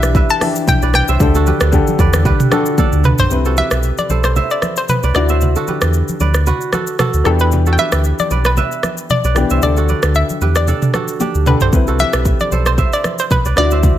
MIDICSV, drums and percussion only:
0, 0, Header, 1, 2, 480
1, 0, Start_track
1, 0, Tempo, 526316
1, 1095, Time_signature, 4, 2, 24, 8
1, 12753, End_track
2, 0, Start_track
2, 0, Title_t, "Drums"
2, 25, Note_on_c, 9, 82, 92
2, 28, Note_on_c, 9, 37, 93
2, 116, Note_off_c, 9, 82, 0
2, 119, Note_off_c, 9, 37, 0
2, 135, Note_on_c, 9, 36, 112
2, 136, Note_on_c, 9, 64, 75
2, 136, Note_on_c, 9, 82, 63
2, 226, Note_off_c, 9, 36, 0
2, 227, Note_off_c, 9, 64, 0
2, 227, Note_off_c, 9, 82, 0
2, 270, Note_on_c, 9, 82, 50
2, 361, Note_off_c, 9, 82, 0
2, 376, Note_on_c, 9, 37, 91
2, 378, Note_on_c, 9, 46, 51
2, 378, Note_on_c, 9, 63, 76
2, 378, Note_on_c, 9, 82, 52
2, 467, Note_off_c, 9, 37, 0
2, 469, Note_off_c, 9, 46, 0
2, 469, Note_off_c, 9, 63, 0
2, 469, Note_off_c, 9, 82, 0
2, 506, Note_on_c, 9, 82, 86
2, 598, Note_off_c, 9, 82, 0
2, 616, Note_on_c, 9, 36, 87
2, 617, Note_on_c, 9, 82, 78
2, 618, Note_on_c, 9, 63, 83
2, 622, Note_on_c, 9, 45, 69
2, 708, Note_off_c, 9, 36, 0
2, 709, Note_off_c, 9, 63, 0
2, 709, Note_off_c, 9, 82, 0
2, 713, Note_off_c, 9, 45, 0
2, 748, Note_on_c, 9, 82, 53
2, 840, Note_off_c, 9, 82, 0
2, 852, Note_on_c, 9, 64, 63
2, 855, Note_on_c, 9, 82, 48
2, 856, Note_on_c, 9, 37, 85
2, 943, Note_off_c, 9, 64, 0
2, 946, Note_off_c, 9, 82, 0
2, 947, Note_off_c, 9, 37, 0
2, 984, Note_on_c, 9, 82, 90
2, 1076, Note_off_c, 9, 82, 0
2, 1096, Note_on_c, 9, 36, 120
2, 1096, Note_on_c, 9, 82, 94
2, 1104, Note_on_c, 9, 64, 82
2, 1187, Note_off_c, 9, 36, 0
2, 1187, Note_off_c, 9, 82, 0
2, 1195, Note_off_c, 9, 64, 0
2, 1228, Note_on_c, 9, 82, 54
2, 1319, Note_off_c, 9, 82, 0
2, 1336, Note_on_c, 9, 82, 58
2, 1340, Note_on_c, 9, 63, 68
2, 1427, Note_off_c, 9, 82, 0
2, 1431, Note_off_c, 9, 63, 0
2, 1463, Note_on_c, 9, 82, 95
2, 1465, Note_on_c, 9, 37, 109
2, 1555, Note_off_c, 9, 82, 0
2, 1557, Note_off_c, 9, 37, 0
2, 1573, Note_on_c, 9, 82, 80
2, 1575, Note_on_c, 9, 36, 102
2, 1664, Note_off_c, 9, 82, 0
2, 1666, Note_off_c, 9, 36, 0
2, 1707, Note_on_c, 9, 82, 50
2, 1715, Note_on_c, 9, 63, 71
2, 1799, Note_off_c, 9, 82, 0
2, 1806, Note_off_c, 9, 63, 0
2, 1814, Note_on_c, 9, 36, 91
2, 1816, Note_on_c, 9, 63, 82
2, 1816, Note_on_c, 9, 82, 61
2, 1905, Note_off_c, 9, 36, 0
2, 1907, Note_off_c, 9, 63, 0
2, 1907, Note_off_c, 9, 82, 0
2, 1945, Note_on_c, 9, 82, 97
2, 1947, Note_on_c, 9, 37, 98
2, 2036, Note_off_c, 9, 82, 0
2, 2038, Note_off_c, 9, 37, 0
2, 2054, Note_on_c, 9, 36, 113
2, 2055, Note_on_c, 9, 82, 63
2, 2056, Note_on_c, 9, 64, 77
2, 2146, Note_off_c, 9, 36, 0
2, 2146, Note_off_c, 9, 82, 0
2, 2147, Note_off_c, 9, 64, 0
2, 2188, Note_on_c, 9, 82, 50
2, 2189, Note_on_c, 9, 45, 100
2, 2280, Note_off_c, 9, 45, 0
2, 2280, Note_off_c, 9, 82, 0
2, 2294, Note_on_c, 9, 37, 96
2, 2296, Note_on_c, 9, 82, 54
2, 2298, Note_on_c, 9, 63, 76
2, 2386, Note_off_c, 9, 37, 0
2, 2387, Note_off_c, 9, 82, 0
2, 2390, Note_off_c, 9, 63, 0
2, 2424, Note_on_c, 9, 82, 86
2, 2516, Note_off_c, 9, 82, 0
2, 2534, Note_on_c, 9, 48, 59
2, 2535, Note_on_c, 9, 36, 81
2, 2535, Note_on_c, 9, 82, 76
2, 2538, Note_on_c, 9, 63, 81
2, 2625, Note_off_c, 9, 48, 0
2, 2626, Note_off_c, 9, 82, 0
2, 2627, Note_off_c, 9, 36, 0
2, 2630, Note_off_c, 9, 63, 0
2, 2667, Note_on_c, 9, 82, 56
2, 2758, Note_off_c, 9, 82, 0
2, 2772, Note_on_c, 9, 64, 63
2, 2773, Note_on_c, 9, 82, 48
2, 2774, Note_on_c, 9, 45, 96
2, 2863, Note_off_c, 9, 64, 0
2, 2865, Note_off_c, 9, 82, 0
2, 2866, Note_off_c, 9, 45, 0
2, 2903, Note_on_c, 9, 82, 91
2, 2907, Note_on_c, 9, 43, 94
2, 2913, Note_on_c, 9, 63, 61
2, 2994, Note_off_c, 9, 82, 0
2, 2998, Note_off_c, 9, 43, 0
2, 3005, Note_off_c, 9, 63, 0
2, 3014, Note_on_c, 9, 82, 92
2, 3024, Note_on_c, 9, 64, 80
2, 3105, Note_off_c, 9, 82, 0
2, 3115, Note_off_c, 9, 64, 0
2, 3147, Note_on_c, 9, 82, 53
2, 3238, Note_off_c, 9, 82, 0
2, 3255, Note_on_c, 9, 82, 55
2, 3259, Note_on_c, 9, 63, 65
2, 3346, Note_off_c, 9, 82, 0
2, 3350, Note_off_c, 9, 63, 0
2, 3383, Note_on_c, 9, 82, 94
2, 3385, Note_on_c, 9, 37, 101
2, 3474, Note_off_c, 9, 82, 0
2, 3476, Note_off_c, 9, 37, 0
2, 3492, Note_on_c, 9, 82, 74
2, 3584, Note_off_c, 9, 82, 0
2, 3627, Note_on_c, 9, 82, 48
2, 3635, Note_on_c, 9, 63, 66
2, 3718, Note_off_c, 9, 82, 0
2, 3726, Note_off_c, 9, 63, 0
2, 3736, Note_on_c, 9, 63, 80
2, 3736, Note_on_c, 9, 82, 58
2, 3827, Note_off_c, 9, 63, 0
2, 3827, Note_off_c, 9, 82, 0
2, 3864, Note_on_c, 9, 82, 90
2, 3866, Note_on_c, 9, 37, 91
2, 3955, Note_off_c, 9, 82, 0
2, 3957, Note_off_c, 9, 37, 0
2, 3975, Note_on_c, 9, 82, 62
2, 3976, Note_on_c, 9, 64, 72
2, 4066, Note_off_c, 9, 82, 0
2, 4067, Note_off_c, 9, 64, 0
2, 4109, Note_on_c, 9, 82, 49
2, 4200, Note_off_c, 9, 82, 0
2, 4215, Note_on_c, 9, 37, 87
2, 4216, Note_on_c, 9, 82, 51
2, 4218, Note_on_c, 9, 63, 76
2, 4306, Note_off_c, 9, 37, 0
2, 4308, Note_off_c, 9, 82, 0
2, 4309, Note_off_c, 9, 63, 0
2, 4345, Note_on_c, 9, 82, 81
2, 4436, Note_off_c, 9, 82, 0
2, 4456, Note_on_c, 9, 82, 75
2, 4458, Note_on_c, 9, 63, 80
2, 4460, Note_on_c, 9, 45, 66
2, 4547, Note_off_c, 9, 82, 0
2, 4549, Note_off_c, 9, 63, 0
2, 4552, Note_off_c, 9, 45, 0
2, 4587, Note_on_c, 9, 82, 55
2, 4678, Note_off_c, 9, 82, 0
2, 4692, Note_on_c, 9, 64, 61
2, 4694, Note_on_c, 9, 37, 85
2, 4694, Note_on_c, 9, 82, 48
2, 4783, Note_off_c, 9, 64, 0
2, 4785, Note_off_c, 9, 37, 0
2, 4785, Note_off_c, 9, 82, 0
2, 4823, Note_on_c, 9, 82, 88
2, 4914, Note_off_c, 9, 82, 0
2, 4934, Note_on_c, 9, 82, 87
2, 4944, Note_on_c, 9, 64, 81
2, 5025, Note_off_c, 9, 82, 0
2, 5035, Note_off_c, 9, 64, 0
2, 5067, Note_on_c, 9, 82, 53
2, 5158, Note_off_c, 9, 82, 0
2, 5174, Note_on_c, 9, 82, 54
2, 5180, Note_on_c, 9, 63, 65
2, 5266, Note_off_c, 9, 82, 0
2, 5271, Note_off_c, 9, 63, 0
2, 5302, Note_on_c, 9, 82, 92
2, 5304, Note_on_c, 9, 37, 106
2, 5394, Note_off_c, 9, 82, 0
2, 5395, Note_off_c, 9, 37, 0
2, 5412, Note_on_c, 9, 82, 78
2, 5503, Note_off_c, 9, 82, 0
2, 5546, Note_on_c, 9, 82, 51
2, 5556, Note_on_c, 9, 63, 70
2, 5637, Note_off_c, 9, 82, 0
2, 5647, Note_off_c, 9, 63, 0
2, 5655, Note_on_c, 9, 82, 59
2, 5657, Note_on_c, 9, 63, 81
2, 5746, Note_off_c, 9, 82, 0
2, 5748, Note_off_c, 9, 63, 0
2, 5783, Note_on_c, 9, 82, 91
2, 5786, Note_on_c, 9, 37, 89
2, 5875, Note_off_c, 9, 82, 0
2, 5877, Note_off_c, 9, 37, 0
2, 5895, Note_on_c, 9, 82, 61
2, 5898, Note_on_c, 9, 64, 71
2, 5986, Note_off_c, 9, 82, 0
2, 5989, Note_off_c, 9, 64, 0
2, 6028, Note_on_c, 9, 82, 49
2, 6119, Note_off_c, 9, 82, 0
2, 6134, Note_on_c, 9, 37, 90
2, 6136, Note_on_c, 9, 82, 51
2, 6139, Note_on_c, 9, 63, 76
2, 6225, Note_off_c, 9, 37, 0
2, 6227, Note_off_c, 9, 82, 0
2, 6231, Note_off_c, 9, 63, 0
2, 6265, Note_on_c, 9, 82, 83
2, 6356, Note_off_c, 9, 82, 0
2, 6376, Note_on_c, 9, 37, 101
2, 6376, Note_on_c, 9, 82, 71
2, 6379, Note_on_c, 9, 63, 79
2, 6380, Note_on_c, 9, 45, 64
2, 6467, Note_off_c, 9, 37, 0
2, 6467, Note_off_c, 9, 82, 0
2, 6470, Note_off_c, 9, 63, 0
2, 6471, Note_off_c, 9, 45, 0
2, 6507, Note_on_c, 9, 82, 53
2, 6598, Note_off_c, 9, 82, 0
2, 6613, Note_on_c, 9, 64, 63
2, 6614, Note_on_c, 9, 37, 85
2, 6614, Note_on_c, 9, 82, 48
2, 6704, Note_off_c, 9, 64, 0
2, 6705, Note_off_c, 9, 82, 0
2, 6706, Note_off_c, 9, 37, 0
2, 6743, Note_on_c, 9, 82, 90
2, 6834, Note_off_c, 9, 82, 0
2, 6855, Note_on_c, 9, 82, 91
2, 6865, Note_on_c, 9, 64, 80
2, 6946, Note_off_c, 9, 82, 0
2, 6956, Note_off_c, 9, 64, 0
2, 6987, Note_on_c, 9, 82, 54
2, 7078, Note_off_c, 9, 82, 0
2, 7096, Note_on_c, 9, 82, 54
2, 7099, Note_on_c, 9, 63, 65
2, 7187, Note_off_c, 9, 82, 0
2, 7191, Note_off_c, 9, 63, 0
2, 7223, Note_on_c, 9, 82, 94
2, 7225, Note_on_c, 9, 37, 103
2, 7315, Note_off_c, 9, 82, 0
2, 7317, Note_off_c, 9, 37, 0
2, 7333, Note_on_c, 9, 82, 77
2, 7424, Note_off_c, 9, 82, 0
2, 7467, Note_on_c, 9, 82, 50
2, 7475, Note_on_c, 9, 63, 71
2, 7558, Note_off_c, 9, 82, 0
2, 7566, Note_off_c, 9, 63, 0
2, 7575, Note_on_c, 9, 82, 58
2, 7576, Note_on_c, 9, 63, 78
2, 7666, Note_off_c, 9, 82, 0
2, 7667, Note_off_c, 9, 63, 0
2, 7704, Note_on_c, 9, 82, 90
2, 7706, Note_on_c, 9, 37, 93
2, 7795, Note_off_c, 9, 82, 0
2, 7798, Note_off_c, 9, 37, 0
2, 7815, Note_on_c, 9, 82, 61
2, 7816, Note_on_c, 9, 64, 76
2, 7906, Note_off_c, 9, 82, 0
2, 7907, Note_off_c, 9, 64, 0
2, 7949, Note_on_c, 9, 82, 48
2, 8040, Note_off_c, 9, 82, 0
2, 8055, Note_on_c, 9, 37, 93
2, 8056, Note_on_c, 9, 82, 53
2, 8058, Note_on_c, 9, 63, 77
2, 8146, Note_off_c, 9, 37, 0
2, 8148, Note_off_c, 9, 82, 0
2, 8149, Note_off_c, 9, 63, 0
2, 8185, Note_on_c, 9, 82, 80
2, 8276, Note_off_c, 9, 82, 0
2, 8296, Note_on_c, 9, 82, 73
2, 8298, Note_on_c, 9, 63, 81
2, 8301, Note_on_c, 9, 45, 66
2, 8387, Note_off_c, 9, 82, 0
2, 8389, Note_off_c, 9, 63, 0
2, 8392, Note_off_c, 9, 45, 0
2, 8428, Note_on_c, 9, 82, 52
2, 8519, Note_off_c, 9, 82, 0
2, 8532, Note_on_c, 9, 64, 60
2, 8534, Note_on_c, 9, 82, 49
2, 8535, Note_on_c, 9, 37, 83
2, 8623, Note_off_c, 9, 64, 0
2, 8626, Note_off_c, 9, 37, 0
2, 8626, Note_off_c, 9, 82, 0
2, 8664, Note_on_c, 9, 82, 84
2, 8755, Note_off_c, 9, 82, 0
2, 8776, Note_on_c, 9, 82, 89
2, 8784, Note_on_c, 9, 64, 77
2, 8867, Note_off_c, 9, 82, 0
2, 8875, Note_off_c, 9, 64, 0
2, 8908, Note_on_c, 9, 82, 54
2, 8999, Note_off_c, 9, 82, 0
2, 9015, Note_on_c, 9, 82, 54
2, 9019, Note_on_c, 9, 63, 64
2, 9106, Note_off_c, 9, 82, 0
2, 9110, Note_off_c, 9, 63, 0
2, 9143, Note_on_c, 9, 82, 92
2, 9145, Note_on_c, 9, 37, 105
2, 9235, Note_off_c, 9, 82, 0
2, 9237, Note_off_c, 9, 37, 0
2, 9254, Note_on_c, 9, 82, 73
2, 9345, Note_off_c, 9, 82, 0
2, 9387, Note_on_c, 9, 82, 50
2, 9395, Note_on_c, 9, 63, 67
2, 9479, Note_off_c, 9, 82, 0
2, 9487, Note_off_c, 9, 63, 0
2, 9496, Note_on_c, 9, 63, 76
2, 9496, Note_on_c, 9, 82, 60
2, 9587, Note_off_c, 9, 82, 0
2, 9588, Note_off_c, 9, 63, 0
2, 9625, Note_on_c, 9, 82, 90
2, 9627, Note_on_c, 9, 37, 94
2, 9716, Note_off_c, 9, 82, 0
2, 9718, Note_off_c, 9, 37, 0
2, 9735, Note_on_c, 9, 82, 62
2, 9737, Note_on_c, 9, 64, 74
2, 9827, Note_off_c, 9, 82, 0
2, 9828, Note_off_c, 9, 64, 0
2, 9869, Note_on_c, 9, 45, 100
2, 9869, Note_on_c, 9, 82, 50
2, 9960, Note_off_c, 9, 82, 0
2, 9961, Note_off_c, 9, 45, 0
2, 9975, Note_on_c, 9, 37, 92
2, 9976, Note_on_c, 9, 82, 52
2, 9979, Note_on_c, 9, 63, 79
2, 10066, Note_off_c, 9, 37, 0
2, 10067, Note_off_c, 9, 82, 0
2, 10070, Note_off_c, 9, 63, 0
2, 10105, Note_on_c, 9, 82, 83
2, 10196, Note_off_c, 9, 82, 0
2, 10215, Note_on_c, 9, 48, 52
2, 10216, Note_on_c, 9, 82, 78
2, 10219, Note_on_c, 9, 63, 76
2, 10306, Note_off_c, 9, 48, 0
2, 10307, Note_off_c, 9, 82, 0
2, 10310, Note_off_c, 9, 63, 0
2, 10348, Note_on_c, 9, 82, 51
2, 10439, Note_off_c, 9, 82, 0
2, 10452, Note_on_c, 9, 64, 58
2, 10454, Note_on_c, 9, 82, 47
2, 10455, Note_on_c, 9, 45, 85
2, 10543, Note_off_c, 9, 64, 0
2, 10545, Note_off_c, 9, 82, 0
2, 10546, Note_off_c, 9, 45, 0
2, 10583, Note_on_c, 9, 82, 89
2, 10587, Note_on_c, 9, 43, 89
2, 10674, Note_off_c, 9, 82, 0
2, 10678, Note_off_c, 9, 43, 0
2, 10695, Note_on_c, 9, 82, 85
2, 10696, Note_on_c, 9, 36, 121
2, 10704, Note_on_c, 9, 64, 78
2, 10786, Note_off_c, 9, 82, 0
2, 10787, Note_off_c, 9, 36, 0
2, 10795, Note_off_c, 9, 64, 0
2, 10828, Note_on_c, 9, 82, 54
2, 10919, Note_off_c, 9, 82, 0
2, 10936, Note_on_c, 9, 82, 54
2, 10940, Note_on_c, 9, 63, 67
2, 11027, Note_off_c, 9, 82, 0
2, 11031, Note_off_c, 9, 63, 0
2, 11064, Note_on_c, 9, 82, 91
2, 11066, Note_on_c, 9, 37, 106
2, 11155, Note_off_c, 9, 82, 0
2, 11157, Note_off_c, 9, 37, 0
2, 11174, Note_on_c, 9, 82, 76
2, 11176, Note_on_c, 9, 36, 101
2, 11265, Note_off_c, 9, 82, 0
2, 11267, Note_off_c, 9, 36, 0
2, 11308, Note_on_c, 9, 82, 50
2, 11315, Note_on_c, 9, 63, 68
2, 11399, Note_off_c, 9, 82, 0
2, 11406, Note_off_c, 9, 63, 0
2, 11416, Note_on_c, 9, 82, 59
2, 11417, Note_on_c, 9, 63, 76
2, 11507, Note_off_c, 9, 82, 0
2, 11508, Note_off_c, 9, 63, 0
2, 11545, Note_on_c, 9, 82, 94
2, 11547, Note_on_c, 9, 37, 92
2, 11636, Note_off_c, 9, 82, 0
2, 11638, Note_off_c, 9, 37, 0
2, 11655, Note_on_c, 9, 36, 101
2, 11656, Note_on_c, 9, 64, 74
2, 11656, Note_on_c, 9, 82, 61
2, 11746, Note_off_c, 9, 36, 0
2, 11747, Note_off_c, 9, 64, 0
2, 11747, Note_off_c, 9, 82, 0
2, 11789, Note_on_c, 9, 82, 47
2, 11881, Note_off_c, 9, 82, 0
2, 11895, Note_on_c, 9, 37, 89
2, 11897, Note_on_c, 9, 82, 51
2, 11898, Note_on_c, 9, 63, 72
2, 11986, Note_off_c, 9, 37, 0
2, 11988, Note_off_c, 9, 82, 0
2, 11990, Note_off_c, 9, 63, 0
2, 12026, Note_on_c, 9, 82, 81
2, 12117, Note_off_c, 9, 82, 0
2, 12136, Note_on_c, 9, 36, 80
2, 12136, Note_on_c, 9, 82, 78
2, 12138, Note_on_c, 9, 63, 79
2, 12141, Note_on_c, 9, 45, 66
2, 12227, Note_off_c, 9, 36, 0
2, 12228, Note_off_c, 9, 82, 0
2, 12230, Note_off_c, 9, 63, 0
2, 12232, Note_off_c, 9, 45, 0
2, 12267, Note_on_c, 9, 82, 54
2, 12359, Note_off_c, 9, 82, 0
2, 12372, Note_on_c, 9, 64, 59
2, 12374, Note_on_c, 9, 82, 47
2, 12375, Note_on_c, 9, 37, 85
2, 12463, Note_off_c, 9, 64, 0
2, 12465, Note_off_c, 9, 82, 0
2, 12466, Note_off_c, 9, 37, 0
2, 12504, Note_on_c, 9, 82, 86
2, 12595, Note_off_c, 9, 82, 0
2, 12615, Note_on_c, 9, 82, 86
2, 12616, Note_on_c, 9, 36, 120
2, 12624, Note_on_c, 9, 64, 77
2, 12707, Note_off_c, 9, 36, 0
2, 12707, Note_off_c, 9, 82, 0
2, 12715, Note_off_c, 9, 64, 0
2, 12753, End_track
0, 0, End_of_file